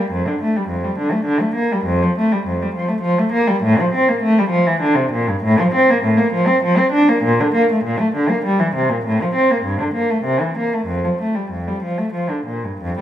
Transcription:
0.00 0.11 G3 medium
0.11 0.25 F2 medium
0.27 0.40 D3 medium
0.42 0.55 A3 medium
0.56 0.69 G3 medium
0.68 0.83 F2 medium
0.84 0.98 G3 medium
0.98 1.12 D3 medium
1.12 1.26 A3 medium
1.25 1.40 D3 medium
1.40 1.56 A3 medium
1.55 1.70 A#3 medium
1.72 1.87 G3 medium
1.85 2.01 F2 medium
2.03 2.17 F3 medium
2.18 2.32 A3 medium
2.32 2.46 G3 medium
2.46 2.61 F2 medium
2.62 2.76 G3 medium
2.75 2.90 F3 medium
2.88 3.04 A3 medium
3.01 3.18 F3 medium
3.18 3.34 A3 medium
3.32 3.48 A#3 medium
3.48 3.63 G3 medium
3.63 3.78 A2 medium
3.80 3.94 F3 medium
3.94 4.08 C4 medium
4.08 4.23 A#3 medium
4.23 4.37 A3 medium
4.38 4.53 G3 medium
4.50 4.65 F3 medium
4.66 4.81 E3 medium
4.81 4.96 D3 medium
4.95 5.11 C3 medium
5.12 5.27 A#2 medium
5.27 5.43 G2 medium
5.43 5.58 A2 medium
5.59 5.73 F3 medium
5.74 5.88 C4 medium
5.90 6.03 A#3 medium
6.03 6.17 A2 medium
6.17 6.32 A#3 medium
6.33 6.47 F3 medium
6.47 6.62 C4 medium
6.63 6.77 F3 medium
6.77 6.92 C4 medium
6.91 7.06 D4 medium
7.08 7.22 A#3 medium
7.23 7.37 A#2 medium
7.40 7.53 D3 medium
7.54 7.67 A#3 medium
7.72 7.84 A3 medium
7.84 7.97 A#2 medium
7.99 8.12 A3 medium
8.15 8.27 D3 medium
8.29 8.42 A#3 medium
8.44 8.57 G3 medium
8.59 8.72 E3 medium
8.75 8.88 C3 medium
8.89 9.04 A#2 medium
9.06 9.19 A2 medium
9.22 9.36 F3 medium
9.35 9.49 C4 medium
9.50 9.65 A#3 medium
9.63 9.78 G2 medium
9.80 9.95 D3 medium
9.94 10.09 A#3 medium
10.10 10.25 A3 medium
10.24 10.40 C3 medium
10.40 10.56 E3 medium
10.58 10.73 A#3 medium
10.73 10.89 A3 medium
10.86 11.03 F2 medium
11.04 11.20 F3 medium
11.21 11.37 A3 medium
11.35 11.52 G3 soft
11.51 11.67 F2 soft
11.67 11.84 G3 soft
11.83 11.99 F3 medium
11.98 12.15 A3 medium
12.13 12.30 F3 medium
12.30 12.47 D3 soft
12.47 12.63 A#2 soft
12.64 12.80 G2 medium
12.82 12.97 F2 medium

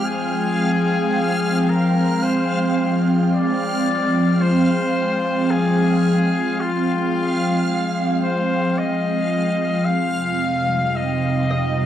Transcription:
0.00 9.86 F3 medium
0.00 9.86 G#3 medium
0.00 11.18 C4 medium
0.00 9.85 F5 medium
0.00 11.13 G5 medium
0.00 9.85 F6 medium
0.05 1.71 G#4 loud
1.69 2.25 A#4 medium
2.23 3.05 C5 medium
3.34 4.43 D5 loud
4.41 5.52 C5 loud
5.50 6.62 G#4 medium
6.60 7.96 F4 loud
8.23 8.80 C5 medium
8.78 9.87 D#5 loud
9.84 11.86 F2 medium
9.84 10.98 F5 loud
9.84 11.86 F5 medium
9.84 11.86 F6 medium
9.98 11.86 C3 medium
10.15 11.86 G3 medium
10.28 11.86 D#4 medium
10.96 11.86 D#5 loud
11.51 11.86 D#5 medium

